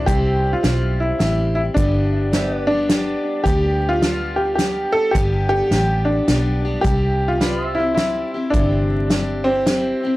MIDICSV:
0, 0, Header, 1, 6, 480
1, 0, Start_track
1, 0, Key_signature, 0, "major"
1, 0, Tempo, 563910
1, 66, Time_signature, 3, 2, 24, 8
1, 8655, End_track
2, 0, Start_track
2, 0, Title_t, "Pedal steel guitar"
2, 0, Program_c, 0, 26
2, 70, Note_on_c, 0, 72, 65
2, 78, Note_on_c, 0, 76, 62
2, 1493, Note_off_c, 0, 72, 0
2, 1497, Note_off_c, 0, 76, 0
2, 1990, Note_on_c, 0, 72, 60
2, 1998, Note_on_c, 0, 76, 62
2, 2160, Note_off_c, 0, 72, 0
2, 2160, Note_on_c, 0, 71, 60
2, 2210, Note_off_c, 0, 76, 0
2, 2210, Note_on_c, 0, 74, 62
2, 5794, Note_off_c, 0, 71, 0
2, 5798, Note_off_c, 0, 74, 0
2, 6308, Note_on_c, 0, 71, 61
2, 6313, Note_on_c, 0, 74, 64
2, 6479, Note_off_c, 0, 71, 0
2, 6479, Note_on_c, 0, 72, 61
2, 6526, Note_off_c, 0, 74, 0
2, 6526, Note_on_c, 0, 76, 64
2, 8655, Note_off_c, 0, 72, 0
2, 8655, Note_off_c, 0, 76, 0
2, 8655, End_track
3, 0, Start_track
3, 0, Title_t, "Upright piano"
3, 0, Program_c, 1, 0
3, 54, Note_on_c, 1, 67, 93
3, 429, Note_off_c, 1, 67, 0
3, 451, Note_on_c, 1, 65, 78
3, 826, Note_off_c, 1, 65, 0
3, 852, Note_on_c, 1, 64, 78
3, 1001, Note_off_c, 1, 64, 0
3, 1014, Note_on_c, 1, 64, 70
3, 1307, Note_off_c, 1, 64, 0
3, 1320, Note_on_c, 1, 64, 85
3, 1362, Note_off_c, 1, 64, 0
3, 1484, Note_on_c, 1, 62, 84
3, 2256, Note_off_c, 1, 62, 0
3, 2273, Note_on_c, 1, 62, 94
3, 2897, Note_off_c, 1, 62, 0
3, 2924, Note_on_c, 1, 67, 94
3, 3309, Note_on_c, 1, 65, 92
3, 3345, Note_off_c, 1, 67, 0
3, 3712, Note_on_c, 1, 67, 82
3, 3736, Note_off_c, 1, 65, 0
3, 3863, Note_off_c, 1, 67, 0
3, 3876, Note_on_c, 1, 67, 83
3, 4183, Note_off_c, 1, 67, 0
3, 4192, Note_on_c, 1, 69, 96
3, 4352, Note_on_c, 1, 67, 88
3, 4377, Note_off_c, 1, 69, 0
3, 4661, Note_off_c, 1, 67, 0
3, 4674, Note_on_c, 1, 67, 111
3, 5133, Note_off_c, 1, 67, 0
3, 5149, Note_on_c, 1, 62, 84
3, 5799, Note_on_c, 1, 67, 91
3, 5830, Note_off_c, 1, 62, 0
3, 6198, Note_on_c, 1, 65, 85
3, 6222, Note_off_c, 1, 67, 0
3, 6594, Note_on_c, 1, 64, 88
3, 6620, Note_off_c, 1, 65, 0
3, 6750, Note_off_c, 1, 64, 0
3, 6763, Note_on_c, 1, 64, 81
3, 7238, Note_on_c, 1, 62, 88
3, 7269, Note_off_c, 1, 64, 0
3, 8037, Note_on_c, 1, 60, 102
3, 8071, Note_off_c, 1, 62, 0
3, 8655, Note_off_c, 1, 60, 0
3, 8655, End_track
4, 0, Start_track
4, 0, Title_t, "Steel-string acoustic guitar"
4, 0, Program_c, 2, 25
4, 65, Note_on_c, 2, 48, 75
4, 67, Note_on_c, 2, 55, 73
4, 75, Note_on_c, 2, 60, 76
4, 80, Note_on_c, 2, 64, 80
4, 83, Note_on_c, 2, 67, 82
4, 532, Note_off_c, 2, 55, 0
4, 535, Note_off_c, 2, 60, 0
4, 535, Note_on_c, 2, 55, 55
4, 542, Note_off_c, 2, 64, 0
4, 545, Note_off_c, 2, 48, 0
4, 546, Note_on_c, 2, 60, 62
4, 553, Note_on_c, 2, 64, 61
4, 559, Note_off_c, 2, 67, 0
4, 563, Note_on_c, 2, 67, 67
4, 1015, Note_off_c, 2, 55, 0
4, 1019, Note_on_c, 2, 55, 51
4, 1022, Note_off_c, 2, 60, 0
4, 1029, Note_off_c, 2, 64, 0
4, 1032, Note_on_c, 2, 60, 69
4, 1040, Note_on_c, 2, 64, 55
4, 1043, Note_off_c, 2, 67, 0
4, 1046, Note_on_c, 2, 67, 68
4, 1504, Note_on_c, 2, 43, 76
4, 1506, Note_on_c, 2, 50, 65
4, 1508, Note_off_c, 2, 55, 0
4, 1509, Note_off_c, 2, 60, 0
4, 1511, Note_on_c, 2, 55, 81
4, 1512, Note_off_c, 2, 64, 0
4, 1514, Note_on_c, 2, 59, 79
4, 1516, Note_on_c, 2, 62, 70
4, 1518, Note_off_c, 2, 67, 0
4, 1522, Note_on_c, 2, 67, 81
4, 1978, Note_off_c, 2, 55, 0
4, 1982, Note_off_c, 2, 59, 0
4, 1982, Note_on_c, 2, 55, 56
4, 1984, Note_off_c, 2, 43, 0
4, 1985, Note_off_c, 2, 50, 0
4, 1990, Note_off_c, 2, 62, 0
4, 1992, Note_on_c, 2, 59, 70
4, 1999, Note_on_c, 2, 62, 59
4, 2006, Note_off_c, 2, 67, 0
4, 2009, Note_on_c, 2, 67, 61
4, 2292, Note_off_c, 2, 67, 0
4, 2298, Note_off_c, 2, 55, 0
4, 2302, Note_on_c, 2, 67, 48
4, 2303, Note_off_c, 2, 62, 0
4, 2304, Note_off_c, 2, 59, 0
4, 2314, Note_on_c, 2, 62, 50
4, 2321, Note_on_c, 2, 59, 37
4, 2328, Note_on_c, 2, 55, 41
4, 2453, Note_off_c, 2, 55, 0
4, 2461, Note_off_c, 2, 59, 0
4, 2463, Note_on_c, 2, 55, 57
4, 2466, Note_off_c, 2, 67, 0
4, 2471, Note_on_c, 2, 59, 65
4, 2472, Note_off_c, 2, 62, 0
4, 2482, Note_on_c, 2, 62, 65
4, 2487, Note_on_c, 2, 67, 68
4, 2946, Note_on_c, 2, 43, 66
4, 2948, Note_off_c, 2, 59, 0
4, 2953, Note_on_c, 2, 50, 65
4, 2954, Note_off_c, 2, 55, 0
4, 2954, Note_off_c, 2, 62, 0
4, 2957, Note_on_c, 2, 55, 71
4, 2962, Note_on_c, 2, 59, 76
4, 2963, Note_off_c, 2, 67, 0
4, 2964, Note_on_c, 2, 62, 72
4, 2967, Note_on_c, 2, 67, 85
4, 3417, Note_off_c, 2, 55, 0
4, 3421, Note_on_c, 2, 55, 59
4, 3422, Note_off_c, 2, 59, 0
4, 3426, Note_off_c, 2, 43, 0
4, 3426, Note_off_c, 2, 62, 0
4, 3429, Note_off_c, 2, 50, 0
4, 3432, Note_on_c, 2, 59, 58
4, 3436, Note_on_c, 2, 62, 66
4, 3442, Note_off_c, 2, 67, 0
4, 3446, Note_on_c, 2, 67, 68
4, 3897, Note_off_c, 2, 55, 0
4, 3901, Note_off_c, 2, 59, 0
4, 3901, Note_on_c, 2, 55, 55
4, 3905, Note_off_c, 2, 62, 0
4, 3911, Note_on_c, 2, 59, 59
4, 3915, Note_on_c, 2, 62, 57
4, 3920, Note_off_c, 2, 67, 0
4, 3923, Note_on_c, 2, 67, 62
4, 4381, Note_on_c, 2, 43, 84
4, 4384, Note_off_c, 2, 59, 0
4, 4387, Note_off_c, 2, 55, 0
4, 4387, Note_off_c, 2, 62, 0
4, 4390, Note_on_c, 2, 50, 70
4, 4390, Note_on_c, 2, 55, 71
4, 4394, Note_on_c, 2, 59, 77
4, 4397, Note_off_c, 2, 67, 0
4, 4397, Note_on_c, 2, 62, 80
4, 4400, Note_on_c, 2, 67, 72
4, 4859, Note_off_c, 2, 55, 0
4, 4861, Note_off_c, 2, 59, 0
4, 4862, Note_on_c, 2, 55, 62
4, 4863, Note_off_c, 2, 43, 0
4, 4868, Note_off_c, 2, 50, 0
4, 4869, Note_off_c, 2, 62, 0
4, 4871, Note_on_c, 2, 59, 57
4, 4879, Note_on_c, 2, 62, 64
4, 4884, Note_off_c, 2, 67, 0
4, 4888, Note_on_c, 2, 67, 63
4, 5340, Note_off_c, 2, 55, 0
4, 5341, Note_off_c, 2, 59, 0
4, 5343, Note_on_c, 2, 55, 67
4, 5352, Note_off_c, 2, 62, 0
4, 5352, Note_on_c, 2, 59, 58
4, 5363, Note_on_c, 2, 62, 62
4, 5367, Note_off_c, 2, 67, 0
4, 5371, Note_on_c, 2, 67, 70
4, 5648, Note_off_c, 2, 67, 0
4, 5658, Note_on_c, 2, 67, 49
4, 5660, Note_off_c, 2, 55, 0
4, 5660, Note_off_c, 2, 62, 0
4, 5664, Note_off_c, 2, 59, 0
4, 5670, Note_on_c, 2, 62, 48
4, 5678, Note_on_c, 2, 59, 41
4, 5684, Note_on_c, 2, 55, 42
4, 5819, Note_off_c, 2, 55, 0
4, 5821, Note_on_c, 2, 48, 68
4, 5825, Note_off_c, 2, 67, 0
4, 5829, Note_off_c, 2, 59, 0
4, 5829, Note_on_c, 2, 55, 77
4, 5831, Note_off_c, 2, 62, 0
4, 5832, Note_on_c, 2, 60, 74
4, 5836, Note_on_c, 2, 64, 75
4, 5841, Note_on_c, 2, 67, 84
4, 6301, Note_off_c, 2, 55, 0
4, 6303, Note_off_c, 2, 48, 0
4, 6304, Note_on_c, 2, 55, 65
4, 6305, Note_off_c, 2, 60, 0
4, 6311, Note_off_c, 2, 64, 0
4, 6315, Note_on_c, 2, 60, 51
4, 6321, Note_on_c, 2, 64, 72
4, 6324, Note_off_c, 2, 67, 0
4, 6327, Note_on_c, 2, 67, 68
4, 6606, Note_off_c, 2, 67, 0
4, 6616, Note_on_c, 2, 67, 49
4, 6617, Note_off_c, 2, 64, 0
4, 6620, Note_off_c, 2, 55, 0
4, 6625, Note_off_c, 2, 60, 0
4, 6628, Note_on_c, 2, 64, 40
4, 6640, Note_on_c, 2, 60, 41
4, 6784, Note_off_c, 2, 60, 0
4, 6784, Note_off_c, 2, 67, 0
4, 6784, Note_on_c, 2, 55, 59
4, 6789, Note_off_c, 2, 64, 0
4, 6794, Note_on_c, 2, 60, 59
4, 6802, Note_on_c, 2, 64, 62
4, 6809, Note_on_c, 2, 67, 68
4, 7089, Note_off_c, 2, 67, 0
4, 7099, Note_on_c, 2, 67, 47
4, 7100, Note_off_c, 2, 55, 0
4, 7100, Note_off_c, 2, 64, 0
4, 7105, Note_off_c, 2, 60, 0
4, 7111, Note_on_c, 2, 64, 41
4, 7121, Note_on_c, 2, 60, 43
4, 7262, Note_off_c, 2, 60, 0
4, 7263, Note_on_c, 2, 48, 81
4, 7265, Note_off_c, 2, 67, 0
4, 7266, Note_off_c, 2, 64, 0
4, 7268, Note_on_c, 2, 55, 76
4, 7272, Note_on_c, 2, 60, 68
4, 7276, Note_on_c, 2, 64, 74
4, 7280, Note_on_c, 2, 67, 79
4, 7739, Note_off_c, 2, 55, 0
4, 7742, Note_off_c, 2, 60, 0
4, 7743, Note_on_c, 2, 55, 56
4, 7745, Note_off_c, 2, 48, 0
4, 7751, Note_off_c, 2, 64, 0
4, 7752, Note_on_c, 2, 60, 65
4, 7760, Note_on_c, 2, 64, 62
4, 7765, Note_off_c, 2, 67, 0
4, 7768, Note_on_c, 2, 67, 62
4, 8046, Note_off_c, 2, 67, 0
4, 8056, Note_on_c, 2, 67, 51
4, 8059, Note_off_c, 2, 55, 0
4, 8060, Note_off_c, 2, 64, 0
4, 8064, Note_off_c, 2, 60, 0
4, 8070, Note_on_c, 2, 64, 46
4, 8080, Note_on_c, 2, 60, 41
4, 8220, Note_off_c, 2, 60, 0
4, 8220, Note_on_c, 2, 55, 53
4, 8223, Note_off_c, 2, 67, 0
4, 8231, Note_off_c, 2, 64, 0
4, 8231, Note_on_c, 2, 60, 60
4, 8240, Note_on_c, 2, 64, 66
4, 8246, Note_on_c, 2, 67, 70
4, 8530, Note_off_c, 2, 67, 0
4, 8538, Note_off_c, 2, 55, 0
4, 8540, Note_on_c, 2, 67, 44
4, 8543, Note_off_c, 2, 60, 0
4, 8544, Note_off_c, 2, 64, 0
4, 8554, Note_on_c, 2, 64, 44
4, 8566, Note_on_c, 2, 60, 48
4, 8655, Note_off_c, 2, 60, 0
4, 8655, Note_off_c, 2, 64, 0
4, 8655, Note_off_c, 2, 67, 0
4, 8655, End_track
5, 0, Start_track
5, 0, Title_t, "Fingered electric bass"
5, 0, Program_c, 3, 33
5, 64, Note_on_c, 3, 36, 99
5, 457, Note_off_c, 3, 36, 0
5, 545, Note_on_c, 3, 35, 81
5, 953, Note_off_c, 3, 35, 0
5, 1022, Note_on_c, 3, 33, 76
5, 1431, Note_off_c, 3, 33, 0
5, 1504, Note_on_c, 3, 31, 96
5, 2682, Note_off_c, 3, 31, 0
5, 2941, Note_on_c, 3, 38, 81
5, 4121, Note_off_c, 3, 38, 0
5, 4383, Note_on_c, 3, 31, 91
5, 4777, Note_off_c, 3, 31, 0
5, 4861, Note_on_c, 3, 33, 93
5, 5271, Note_off_c, 3, 33, 0
5, 5347, Note_on_c, 3, 35, 74
5, 5755, Note_off_c, 3, 35, 0
5, 5823, Note_on_c, 3, 36, 87
5, 7002, Note_off_c, 3, 36, 0
5, 7264, Note_on_c, 3, 31, 87
5, 8443, Note_off_c, 3, 31, 0
5, 8655, End_track
6, 0, Start_track
6, 0, Title_t, "Drums"
6, 64, Note_on_c, 9, 36, 101
6, 65, Note_on_c, 9, 42, 56
6, 149, Note_off_c, 9, 36, 0
6, 150, Note_off_c, 9, 42, 0
6, 543, Note_on_c, 9, 38, 82
6, 543, Note_on_c, 9, 42, 55
6, 628, Note_off_c, 9, 38, 0
6, 628, Note_off_c, 9, 42, 0
6, 1022, Note_on_c, 9, 38, 94
6, 1022, Note_on_c, 9, 42, 62
6, 1107, Note_off_c, 9, 38, 0
6, 1107, Note_off_c, 9, 42, 0
6, 1504, Note_on_c, 9, 36, 101
6, 1504, Note_on_c, 9, 42, 60
6, 1589, Note_off_c, 9, 36, 0
6, 1589, Note_off_c, 9, 42, 0
6, 1984, Note_on_c, 9, 38, 77
6, 1984, Note_on_c, 9, 42, 57
6, 2069, Note_off_c, 9, 38, 0
6, 2069, Note_off_c, 9, 42, 0
6, 2463, Note_on_c, 9, 38, 85
6, 2463, Note_on_c, 9, 42, 62
6, 2548, Note_off_c, 9, 38, 0
6, 2548, Note_off_c, 9, 42, 0
6, 2940, Note_on_c, 9, 42, 53
6, 2942, Note_on_c, 9, 36, 102
6, 3025, Note_off_c, 9, 42, 0
6, 3028, Note_off_c, 9, 36, 0
6, 3424, Note_on_c, 9, 38, 77
6, 3424, Note_on_c, 9, 42, 47
6, 3509, Note_off_c, 9, 38, 0
6, 3509, Note_off_c, 9, 42, 0
6, 3904, Note_on_c, 9, 38, 80
6, 3904, Note_on_c, 9, 42, 59
6, 3989, Note_off_c, 9, 38, 0
6, 3989, Note_off_c, 9, 42, 0
6, 4384, Note_on_c, 9, 36, 100
6, 4385, Note_on_c, 9, 42, 66
6, 4469, Note_off_c, 9, 36, 0
6, 4470, Note_off_c, 9, 42, 0
6, 4864, Note_on_c, 9, 38, 74
6, 4864, Note_on_c, 9, 42, 54
6, 4949, Note_off_c, 9, 38, 0
6, 4949, Note_off_c, 9, 42, 0
6, 5345, Note_on_c, 9, 38, 82
6, 5345, Note_on_c, 9, 42, 67
6, 5430, Note_off_c, 9, 38, 0
6, 5430, Note_off_c, 9, 42, 0
6, 5826, Note_on_c, 9, 36, 107
6, 5827, Note_on_c, 9, 42, 57
6, 5911, Note_off_c, 9, 36, 0
6, 5912, Note_off_c, 9, 42, 0
6, 6307, Note_on_c, 9, 38, 78
6, 6307, Note_on_c, 9, 42, 54
6, 6392, Note_off_c, 9, 38, 0
6, 6392, Note_off_c, 9, 42, 0
6, 6787, Note_on_c, 9, 38, 87
6, 6787, Note_on_c, 9, 42, 57
6, 6872, Note_off_c, 9, 38, 0
6, 6872, Note_off_c, 9, 42, 0
6, 7266, Note_on_c, 9, 36, 98
6, 7267, Note_on_c, 9, 42, 57
6, 7352, Note_off_c, 9, 36, 0
6, 7352, Note_off_c, 9, 42, 0
6, 7748, Note_on_c, 9, 38, 80
6, 7748, Note_on_c, 9, 42, 61
6, 7833, Note_off_c, 9, 38, 0
6, 7833, Note_off_c, 9, 42, 0
6, 8227, Note_on_c, 9, 38, 84
6, 8227, Note_on_c, 9, 42, 63
6, 8312, Note_off_c, 9, 38, 0
6, 8312, Note_off_c, 9, 42, 0
6, 8655, End_track
0, 0, End_of_file